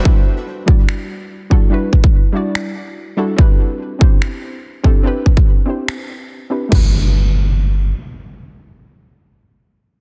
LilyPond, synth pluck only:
\new Staff \with { instrumentName = "Synth pluck" } { \time 4/4 \key g \major \tempo 4 = 144 <g d' e' fis' b'>4. <g d' e' fis' d''>2 <g d' e' fis' a'>8 | <g d' e' fis' b'>4. <g d' e' fis' d''>2 <g d' e' fis' a'>8 | <c' d' e' g' b'>4. <c' d' e' g' c''>2 <c' d' e' g' a'>8 | <c' d' e' g' b'>4. <c' d' e' g' c''>2 <c' d' e' g' b'>8 |
<a d' fis' g' b'>1~ | <a d' fis' g' b'>1 | }